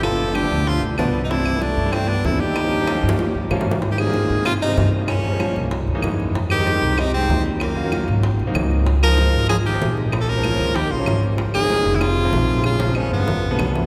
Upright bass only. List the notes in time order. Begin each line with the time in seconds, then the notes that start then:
Already playing: G1
0.51 D2
0.82 D2
0.98 C2
1.77 G2
2.24 D#2
3.03 G2
3.35 G2
3.50 G#2
4.30 G#2
4.77 G2
5.56 C2
5.87 D#2
6.03 F2
6.82 C2
7.29 D#2
8.08 G#1
8.39 C2
8.54 C#2
9.34 G#1
9.81 A#1
10.60 D#2
10.91 A#1
11.07 G#1
11.85 F1
12.33 A#1
13.12 G1
13.43 B1
13.59 C2